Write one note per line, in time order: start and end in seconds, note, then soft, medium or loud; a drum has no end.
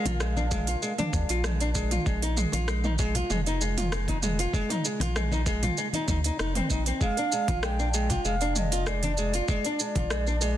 0.00 7.02 A#4 medium
0.00 1.44 F5 medium
0.05 0.76 A#1 loud
0.05 0.20 F4 medium
0.05 mid tom medium
0.05 open hi-hat medium
0.05 high bongo soft
0.05 high conga medium
0.05 low conga medium
0.05 shaker soft
0.20 0.35 G#3 medium
0.20 cross-stick medium
0.20 shaker soft
0.36 0.45 D4 medium
0.36 high bongo soft
0.36 high conga medium
0.36 shaker soft
0.51 0.66 G#3 loud
0.51 kick loud
0.51 mid tom medium
0.51 high bongo soft
0.51 shaker medium
0.67 0.82 F4 medium
0.67 open hi-hat medium
0.67 shaker soft
0.82 0.92 G#3 medium
0.82 shaker soft
0.98 1.13 D4 medium
0.98 mid tom medium
0.98 open hi-hat soft
0.98 high conga medium
0.98 shaker soft
1.13 1.25 D2 medium
1.13 1.29 G#3 medium
1.13 kick loud
1.13 high conga medium
1.13 shaker medium
1.29 1.99 A#1 medium
1.29 1.44 F4 medium
1.29 open hi-hat medium
1.29 shaker soft
1.44 1.59 G#3 medium
1.44 cross-stick medium
1.44 mid tom medium
1.44 shaker soft
1.60 1.69 D4 medium
1.60 open hi-hat soft
1.60 shaker soft
1.75 1.90 G#3 medium
1.75 kick medium
1.75 shaker medium
1.91 2.05 F4 medium
1.91 mid tom medium
1.91 open hi-hat medium
1.91 high conga soft
1.91 shaker soft
2.06 2.46 A#1 medium
2.06 2.21 G#3 loud
2.06 kick loud
2.06 shaker soft
2.22 2.37 D#4 medium
2.22 open hi-hat soft
2.22 high bongo soft
2.22 shaker soft
2.37 2.53 G#3 medium
2.37 mid tom medium
2.37 shaker medium
2.52 3.23 A#1 loud
2.52 2.67 F4 medium
2.52 open hi-hat medium
2.52 high bongo soft
2.52 high conga medium
2.52 shaker soft
2.68 2.83 G#3 medium
2.68 cross-stick medium
2.68 shaker soft
2.84 2.93 D#4 medium
2.84 mid tom medium
2.84 high bongo soft
2.84 shaker soft
2.99 3.14 G#3 loud
2.99 kick loud
2.99 shaker medium
3.15 3.29 F4 medium
3.15 open hi-hat medium
3.15 low conga medium
3.15 shaker soft
3.30 4.47 F1 loud
3.30 3.39 G#3 medium
3.30 mid tom medium
3.30 shaker soft
3.46 3.60 D#4 medium
3.46 open hi-hat soft
3.46 shaker soft
3.61 3.77 G#3 medium
3.61 shaker medium
3.78 3.91 F4 medium
3.78 mid tom medium
3.78 open hi-hat medium
3.78 shaker soft
3.92 4.07 G#3 medium
3.92 cross-stick medium
3.92 shaker soft
4.08 4.17 D#4 medium
4.08 kick medium
4.08 open hi-hat soft
4.08 high conga medium
4.08 shaker soft
4.23 4.38 G#3 medium
4.23 mid tom medium
4.23 shaker medium
4.39 4.52 F4 medium
4.39 open hi-hat medium
4.39 high bongo soft
4.39 shaker soft
4.53 4.69 G#3 loud
4.53 kick loud
4.53 shaker soft
4.69 4.84 D#4 medium
4.69 mid tom medium
4.69 open hi-hat soft
4.69 high bongo soft
4.69 shaker soft
4.85 5.00 G#3 medium
4.85 shaker medium
5.00 5.70 A#1 loud
5.00 5.15 F4 medium
5.00 cross-stick soft
5.00 open hi-hat medium
5.00 high bongo medium
5.00 high conga medium
5.00 low conga medium
5.00 shaker soft
5.16 5.30 G#3 medium
5.16 cross-stick loud
5.16 mid tom medium
5.16 shaker soft
5.31 5.40 D#4 medium
5.31 high bongo soft
5.31 high conga medium
5.31 shaker soft
5.46 5.61 G#3 loud
5.46 kick loud
5.46 high bongo soft
5.46 shaker medium
5.63 5.77 F4 medium
5.63 mid tom medium
5.63 open hi-hat medium
5.63 low conga medium
5.63 shaker soft
5.77 5.87 G#3 medium
5.77 shaker soft
5.93 6.08 D#4 medium
5.93 open hi-hat soft
5.93 high conga medium
5.93 shaker soft
6.08 6.30 D2 medium
6.08 6.18 D#4 medium
6.08 kick loud
6.08 mid tom medium
6.08 high conga medium
6.08 shaker medium
6.24 6.39 D#4 medium
6.24 open hi-hat medium
6.24 shaker soft
6.39 6.62 F1 medium
6.39 6.54 D#4 medium
6.39 cross-stick loud
6.39 shaker soft
6.55 6.69 C4 medium
6.55 mid tom medium
6.55 open hi-hat soft
6.55 shaker soft
6.70 6.92 A#1 medium
6.70 6.86 D#4 medium
6.70 kick medium
6.70 shaker medium
6.86 7.01 C4 medium
6.86 open hi-hat medium
6.86 high conga soft
6.86 shaker soft
7.01 7.16 G#3 loud
7.01 7.60 F5 loud
7.01 kick loud
7.01 shaker soft
7.17 7.32 D4 medium
7.17 open hi-hat soft
7.17 high bongo soft
7.17 shaker soft
7.32 7.48 G#3 medium
7.32 shaker medium
7.48 8.18 A#1 loud
7.48 7.63 F4 medium
7.48 kick loud
7.48 open hi-hat medium
7.48 high bongo soft
7.48 high conga medium
7.48 shaker soft
7.63 7.78 G#3 medium
7.63 8.21 G5 loud
7.63 cross-stick loud
7.63 shaker soft
7.79 7.88 D4 medium
7.79 high bongo soft
7.79 shaker soft
7.94 8.09 G#3 loud
7.94 shaker medium
8.10 8.24 F4 medium
8.10 kick medium
8.10 open hi-hat medium
8.10 low conga medium
8.10 shaker soft
8.24 9.41 F1 loud
8.24 8.34 G#3 medium
8.24 8.54 F5 loud
8.24 shaker soft
8.41 8.55 D4 medium
8.41 open hi-hat soft
8.41 shaker soft
8.56 8.71 G#3 medium
8.56 8.89 D#5 medium
8.56 mid tom medium
8.56 shaker medium
8.72 8.86 F4 medium
8.72 open hi-hat medium
8.72 shaker soft
8.87 9.01 G#3 medium
8.87 9.48 D5 loud
8.87 cross-stick loud
8.87 shaker soft
9.03 9.12 D4 medium
9.03 open hi-hat soft
9.03 high conga medium
9.03 shaker soft
9.17 9.33 G#3 medium
9.17 shaker medium
9.34 9.47 F4 medium
9.34 open hi-hat medium
9.34 high bongo soft
9.34 shaker soft
9.48 9.63 G#3 loud
9.48 10.57 D5 medium
9.48 kick loud
9.48 shaker soft
9.65 9.79 D4 medium
9.65 open hi-hat soft
9.65 high bongo soft
9.65 shaker soft
9.79 9.95 G#3 medium
9.79 shaker medium
9.96 10.57 A#1 loud
9.96 10.10 F4 medium
9.96 kick loud
9.96 open hi-hat medium
9.96 high bongo medium
9.96 high conga medium
9.96 low conga medium
9.96 shaker soft
10.10 10.25 G#3 medium
10.10 cross-stick loud
10.10 shaker soft
10.27 10.35 D4 medium
10.27 high bongo soft
10.27 shaker soft
10.41 10.56 G#3 loud
10.41 high bongo soft
10.41 shaker medium